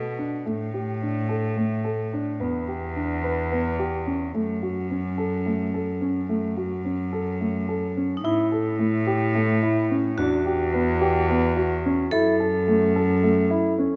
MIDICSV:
0, 0, Header, 1, 4, 480
1, 0, Start_track
1, 0, Tempo, 555556
1, 395, Time_signature, 7, 3, 24, 8
1, 12062, End_track
2, 0, Start_track
2, 0, Title_t, "Vibraphone"
2, 0, Program_c, 0, 11
2, 7060, Note_on_c, 0, 63, 43
2, 7120, Note_off_c, 0, 63, 0
2, 7125, Note_on_c, 0, 64, 62
2, 8792, Note_on_c, 0, 66, 75
2, 8851, Note_off_c, 0, 64, 0
2, 10466, Note_on_c, 0, 69, 87
2, 10523, Note_off_c, 0, 66, 0
2, 12062, Note_off_c, 0, 69, 0
2, 12062, End_track
3, 0, Start_track
3, 0, Title_t, "Grand piano"
3, 0, Program_c, 1, 0
3, 0, Note_on_c, 1, 69, 55
3, 104, Note_off_c, 1, 69, 0
3, 156, Note_on_c, 1, 62, 56
3, 344, Note_off_c, 1, 62, 0
3, 395, Note_on_c, 1, 57, 61
3, 584, Note_off_c, 1, 57, 0
3, 639, Note_on_c, 1, 67, 52
3, 826, Note_off_c, 1, 67, 0
3, 883, Note_on_c, 1, 62, 51
3, 1069, Note_off_c, 1, 62, 0
3, 1114, Note_on_c, 1, 69, 61
3, 1304, Note_off_c, 1, 69, 0
3, 1356, Note_on_c, 1, 57, 59
3, 1545, Note_off_c, 1, 57, 0
3, 1594, Note_on_c, 1, 69, 57
3, 1784, Note_off_c, 1, 69, 0
3, 1839, Note_on_c, 1, 62, 59
3, 2027, Note_off_c, 1, 62, 0
3, 2074, Note_on_c, 1, 59, 58
3, 2264, Note_off_c, 1, 59, 0
3, 2314, Note_on_c, 1, 67, 49
3, 2504, Note_off_c, 1, 67, 0
3, 2555, Note_on_c, 1, 62, 57
3, 2745, Note_off_c, 1, 62, 0
3, 2794, Note_on_c, 1, 71, 61
3, 2985, Note_off_c, 1, 71, 0
3, 3039, Note_on_c, 1, 59, 63
3, 3228, Note_off_c, 1, 59, 0
3, 3277, Note_on_c, 1, 67, 61
3, 3466, Note_off_c, 1, 67, 0
3, 3511, Note_on_c, 1, 61, 55
3, 3703, Note_off_c, 1, 61, 0
3, 3753, Note_on_c, 1, 57, 61
3, 3944, Note_off_c, 1, 57, 0
3, 3997, Note_on_c, 1, 66, 56
3, 4187, Note_off_c, 1, 66, 0
3, 4239, Note_on_c, 1, 61, 57
3, 4428, Note_off_c, 1, 61, 0
3, 4473, Note_on_c, 1, 69, 62
3, 4664, Note_off_c, 1, 69, 0
3, 4717, Note_on_c, 1, 57, 58
3, 4907, Note_off_c, 1, 57, 0
3, 4960, Note_on_c, 1, 69, 59
3, 5149, Note_off_c, 1, 69, 0
3, 5192, Note_on_c, 1, 61, 56
3, 5384, Note_off_c, 1, 61, 0
3, 5436, Note_on_c, 1, 57, 63
3, 5626, Note_off_c, 1, 57, 0
3, 5678, Note_on_c, 1, 66, 57
3, 5867, Note_off_c, 1, 66, 0
3, 5918, Note_on_c, 1, 61, 54
3, 6108, Note_off_c, 1, 61, 0
3, 6157, Note_on_c, 1, 69, 59
3, 6347, Note_off_c, 1, 69, 0
3, 6398, Note_on_c, 1, 57, 58
3, 6588, Note_off_c, 1, 57, 0
3, 6640, Note_on_c, 1, 69, 57
3, 6829, Note_off_c, 1, 69, 0
3, 6883, Note_on_c, 1, 61, 55
3, 7071, Note_off_c, 1, 61, 0
3, 7119, Note_on_c, 1, 64, 73
3, 7308, Note_off_c, 1, 64, 0
3, 7359, Note_on_c, 1, 69, 60
3, 7548, Note_off_c, 1, 69, 0
3, 7593, Note_on_c, 1, 57, 60
3, 7784, Note_off_c, 1, 57, 0
3, 7836, Note_on_c, 1, 67, 69
3, 8026, Note_off_c, 1, 67, 0
3, 8077, Note_on_c, 1, 57, 70
3, 8266, Note_off_c, 1, 57, 0
3, 8317, Note_on_c, 1, 64, 64
3, 8506, Note_off_c, 1, 64, 0
3, 8558, Note_on_c, 1, 61, 62
3, 8747, Note_off_c, 1, 61, 0
3, 8796, Note_on_c, 1, 62, 73
3, 8985, Note_off_c, 1, 62, 0
3, 9034, Note_on_c, 1, 67, 63
3, 9224, Note_off_c, 1, 67, 0
3, 9277, Note_on_c, 1, 59, 61
3, 9465, Note_off_c, 1, 59, 0
3, 9515, Note_on_c, 1, 67, 77
3, 9704, Note_off_c, 1, 67, 0
3, 9759, Note_on_c, 1, 59, 68
3, 9946, Note_off_c, 1, 59, 0
3, 9993, Note_on_c, 1, 66, 72
3, 10183, Note_off_c, 1, 66, 0
3, 10239, Note_on_c, 1, 61, 72
3, 10426, Note_off_c, 1, 61, 0
3, 10473, Note_on_c, 1, 64, 80
3, 10662, Note_off_c, 1, 64, 0
3, 10714, Note_on_c, 1, 69, 67
3, 10903, Note_off_c, 1, 69, 0
3, 10956, Note_on_c, 1, 57, 69
3, 11143, Note_off_c, 1, 57, 0
3, 11195, Note_on_c, 1, 69, 72
3, 11383, Note_off_c, 1, 69, 0
3, 11432, Note_on_c, 1, 57, 69
3, 11621, Note_off_c, 1, 57, 0
3, 11668, Note_on_c, 1, 64, 73
3, 11858, Note_off_c, 1, 64, 0
3, 11909, Note_on_c, 1, 61, 70
3, 12062, Note_off_c, 1, 61, 0
3, 12062, End_track
4, 0, Start_track
4, 0, Title_t, "Cello"
4, 0, Program_c, 2, 42
4, 0, Note_on_c, 2, 47, 60
4, 400, Note_on_c, 2, 45, 59
4, 413, Note_off_c, 2, 47, 0
4, 2077, Note_on_c, 2, 40, 59
4, 2090, Note_off_c, 2, 45, 0
4, 3754, Note_on_c, 2, 42, 58
4, 3767, Note_off_c, 2, 40, 0
4, 5443, Note_off_c, 2, 42, 0
4, 5443, Note_on_c, 2, 42, 60
4, 7088, Note_off_c, 2, 42, 0
4, 7124, Note_on_c, 2, 45, 74
4, 8796, Note_on_c, 2, 40, 69
4, 8809, Note_off_c, 2, 45, 0
4, 10467, Note_on_c, 2, 42, 70
4, 10480, Note_off_c, 2, 40, 0
4, 12062, Note_off_c, 2, 42, 0
4, 12062, End_track
0, 0, End_of_file